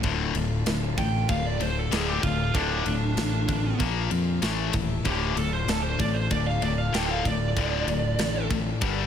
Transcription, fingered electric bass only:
0.04 0.31 D1 medium
0.35 0.62 D1 loud
0.67 0.93 D1 medium
0.98 1.25 A1 medium
1.29 1.56 D1 loud
1.59 1.87 D1 medium
1.91 2.18 D1 medium
2.23 2.50 D1 medium
2.54 2.81 D1 medium
2.86 3.13 D1 medium
3.17 3.71 A1 medium
3.81 4.07 A#1 loud
4.11 4.38 F2 loud
4.42 4.69 A1 medium
4.74 5.01 D#1 medium
5.06 5.33 D1 loud
5.36 5.63 D1 loud
5.68 5.95 D1 loud
5.99 6.26 A1 medium
6.31 6.58 D1 loud
6.62 6.89 D1 medium
6.94 7.21 D1 loud
7.26 7.52 D1 medium
7.57 7.83 D1 medium
7.87 8.14 D1 loud
8.18 8.72 A1 medium
8.82 9.06 G1 medium

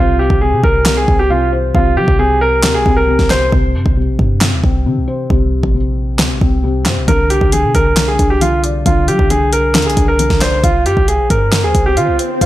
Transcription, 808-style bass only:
0.00 0.29 C2 loud
0.30 0.54 C2 loud
0.52 0.63 C3 loud
0.64 1.06 C2 loud
1.08 1.72 C2 loud
1.75 1.98 C2 loud
1.97 2.07 G3 medium
2.08 2.65 C2 loud
2.64 2.76 D#2 loud
2.75 2.85 C2 medium
2.86 3.18 C2 loud
3.19 3.51 C2 loud
3.52 3.76 C2 loud
3.75 3.85 G2 medium
3.86 4.10 C2 loud
4.08 4.19 A#1 loud
4.19 4.54 G2 loud
4.53 4.63 D#2 medium
4.64 4.87 C2 loud
4.86 4.99 D#3 loud
4.97 5.08 C2 loud
5.30 5.62 C2 loud
5.63 6.21 A#1 loud
6.19 6.32 D2 loud
6.30 6.41 A#1 medium
6.41 6.87 C2 loud
6.86 6.98 G2 loud
6.97 7.07 C2 loud
7.08 7.40 C2 loud
7.41 7.65 C2 loud
7.64 7.74 C3 loud
7.75 8.17 C2 loud
8.19 8.83 C2 loud
8.86 9.10 C2 loud
9.08 9.19 G3 loud
9.19 9.76 C2 loud
9.75 9.87 D#2 loud
9.86 9.96 C2 medium
9.97 10.29 C2 loud
10.30 10.62 C2 loud
10.64 10.87 C2 loud
10.86 10.96 G2 medium
10.97 11.21 C2 loud
11.19 11.30 A#1 loud
11.30 11.65 G2 loud
11.63 11.74 D#2 loud
11.75 11.98 C2 loud
11.97 12.09 D#3 loud
12.08 12.19 C2 loud
12.41 12.46 C2 loud

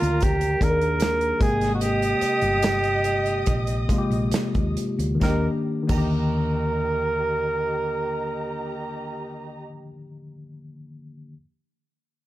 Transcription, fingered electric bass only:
0.02 0.54 D2 medium
0.61 1.32 D#2 medium
1.41 2.13 G#1 medium
2.22 muted fingered electric bass stroke soft
2.42 3.42 G1 medium
3.47 3.85 A#1 medium
4.10 4.30 A#1 medium
4.33 muted fingered electric bass stroke soft
4.55 4.75 D#2 medium
4.99 5.19 D2 medium
5.22 5.47 D#2 medium
5.89 9.69 D#2 medium

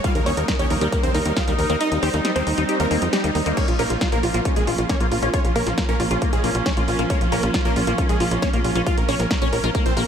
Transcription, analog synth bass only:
0.15 0.22 D#2 medium
0.26 0.33 D#2 loud
0.37 0.44 D#2 loud
0.59 0.66 D#2 medium
0.70 0.77 D#2 loud
0.81 0.88 D#2 medium
1.03 1.10 D#2 medium
1.15 1.21 D#2 loud
1.26 1.32 D#2 medium
1.48 1.54 D#2 medium
1.59 1.65 D#2 loud
1.70 1.76 D#2 loud
1.92 1.98 D#2 medium
2.03 2.09 D#2 loud
2.14 2.20 D#2 loud
2.36 2.42 D#2 medium
2.47 2.53 D#2 loud
2.58 2.64 D#2 loud
2.80 2.87 D#2 medium
2.91 2.98 D#2 loud
3.02 3.09 F2 medium
3.24 3.31 D#2 medium
3.35 3.42 D#2 loud
3.46 3.53 D#2 medium
3.68 3.75 A#1 medium
3.79 3.86 A#1 loud
3.90 3.97 A#1 loud
4.12 4.19 A#1 medium
4.23 4.30 A#1 loud
4.34 4.41 A#1 loud
4.56 4.63 A#1 medium
4.67 4.74 A#1 loud
4.78 4.85 A#1 medium
5.00 5.07 A#1 medium
5.11 5.18 A#1 loud
5.22 5.29 A#1 medium
5.44 5.51 A#1 medium
5.55 5.62 A#1 loud
5.67 5.73 A#1 loud
5.89 5.95 A#1 medium
6.00 6.06 A#1 loud
6.11 6.17 A#1 medium
6.33 6.39 A#1 medium
6.44 6.51 A#1 loud
6.55 6.62 A#1 medium
6.77 6.84 A#1 medium
6.88 6.95 A#1 loud
6.99 7.06 A#1 medium
7.21 7.28 A#1 medium
7.32 7.39 A#1 loud
7.43 7.50 A#1 loud
7.65 7.72 A#1 medium
7.76 7.83 A#1 loud
7.87 7.94 A#1 loud
8.09 8.16 A#1 medium
8.20 8.27 A#1 loud
8.31 8.38 A#1 loud
8.53 8.60 A#1 medium
8.64 8.71 A#1 loud
8.75 8.82 A#1 medium
8.97 9.04 A#1 medium
9.08 9.15 A#1 loud
9.19 9.26 A#1 loud
9.42 9.48 A#1 medium
9.53 9.59 A#1 loud
9.64 9.70 A#1 loud
9.86 9.92 A#1 medium
9.97 10.03 A#1 medium

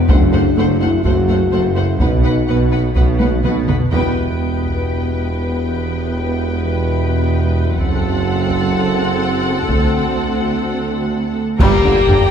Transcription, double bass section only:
0.09 0.51 F#1 medium
0.57 0.99 F#1 medium
1.04 1.47 F#1 medium
1.52 1.95 F#1 medium
2.01 2.43 B1 medium
2.49 2.91 B1 soft
2.97 3.39 B1 soft
3.44 3.87 B1 medium
3.92 7.72 E1 medium
7.76 9.65 F#1 medium
9.69 11.37 D2 soft
11.60 11.68 G1 medium
11.85 11.93 G1 medium
12.08 12.16 G1 medium

